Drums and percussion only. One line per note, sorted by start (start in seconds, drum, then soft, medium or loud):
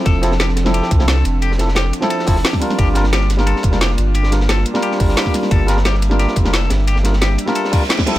0.06 kick loud
0.06 closed hi-hat medium
0.06 ride medium
0.23 snare soft
0.23 closed hi-hat medium
0.23 ride medium
0.32 snare medium
0.40 snare loud
0.40 closed hi-hat medium
0.40 ride medium
0.49 snare soft
0.56 snare medium
0.56 closed hi-hat medium
0.56 ride medium
0.66 snare soft
0.74 closed hi-hat medium
0.74 ride medium
0.83 snare soft
0.91 kick loud
0.91 closed hi-hat medium
0.91 ride medium
0.99 snare medium
0.99 snare soft
1.08 snare loud
1.08 closed hi-hat medium
1.08 ride medium
1.17 snare soft
1.25 closed hi-hat medium
1.25 ride medium
1.42 closed hi-hat medium
1.42 ride medium
1.52 snare soft
1.59 snare medium
1.59 closed hi-hat medium
1.59 ride medium
1.68 snare medium
1.75 snare loud
1.75 closed hi-hat medium
1.75 ride medium
1.93 closed hi-hat medium
1.93 ride medium
2.01 snare soft
2.10 closed hi-hat medium
2.10 ride medium
2.19 snare soft
2.27 kick loud
2.27 closed hi-hat medium
2.27 open hi-hat medium
2.36 snare soft
2.45 snare loud
2.45 closed hi-hat medium
2.45 ride medium
2.53 kick medium
2.53 snare soft
2.62 snare soft
2.62 closed hi-hat medium
2.70 snare soft
2.78 kick loud
2.78 closed hi-hat medium
2.78 ride medium
2.95 snare medium
2.95 closed hi-hat medium
2.95 ride medium
3.04 snare medium
3.13 snare loud
3.13 closed hi-hat medium
3.13 ride medium
3.21 snare soft
3.30 snare soft
3.30 closed hi-hat medium
3.30 ride medium
3.39 snare soft
3.47 closed hi-hat medium
3.47 ride medium
3.56 snare soft
3.63 kick loud
3.63 closed hi-hat medium
3.63 ride medium
3.72 snare medium
3.72 snare soft
3.81 snare loud
3.81 closed hi-hat medium
3.81 ride medium
3.90 snare soft
3.98 closed hi-hat medium
3.98 ride medium
4.14 closed hi-hat medium
4.14 ride medium
4.23 snare medium
4.32 snare medium
4.32 closed hi-hat medium
4.32 ride medium
4.41 snare medium
4.49 snare loud
4.49 closed hi-hat medium
4.49 ride medium
4.65 closed hi-hat medium
4.65 ride medium
4.75 snare soft
4.82 closed hi-hat medium
4.82 ride medium
4.92 snare medium
5.00 kick loud
5.00 closed hi-hat medium
5.00 open hi-hat medium
5.09 snare soft
5.17 snare loud
5.17 closed hi-hat medium
5.17 ride medium
5.26 kick medium
5.26 snare soft
5.34 snare soft
5.34 closed hi-hat medium
5.34 ride medium
5.43 snare soft
5.51 kick loud
5.51 closed hi-hat medium
5.51 ride medium
5.68 snare medium
5.68 closed hi-hat loud
5.68 ride medium
5.77 snare medium
5.85 snare loud
5.85 closed hi-hat medium
5.85 ride medium
5.94 snare soft
6.02 closed hi-hat medium
6.02 ride medium
6.11 snare soft
6.19 snare soft
6.19 closed hi-hat medium
6.19 ride medium
6.28 snare medium
6.36 kick loud
6.36 closed hi-hat medium
6.36 ride medium
6.45 snare medium
6.45 snare soft
6.53 snare loud
6.53 closed hi-hat medium
6.53 ride medium
6.62 snare soft
6.70 snare loud
6.70 closed hi-hat loud
6.70 ride medium
6.79 snare soft
6.88 closed hi-hat medium
6.88 ride medium
6.96 snare soft
7.04 snare medium
7.04 closed hi-hat loud
7.04 ride medium
7.13 snare medium
7.21 snare loud
7.21 closed hi-hat medium
7.21 ride medium
7.38 closed hi-hat loud
7.38 ride medium
7.47 snare soft
7.55 closed hi-hat medium
7.55 ride medium
7.65 snare medium
7.73 kick loud
7.73 closed hi-hat loud
7.73 open hi-hat medium
7.82 snare soft
7.89 snare medium
7.89 snare loud
7.89 closed hi-hat medium
7.89 ride medium
7.97 kick medium
7.97 snare loud
7.97 snare soft
7.97 ride medium
8.06 snare loud
8.06 snare soft
8.06 closed hi-hat loud
8.06 ride medium
8.15 snare loud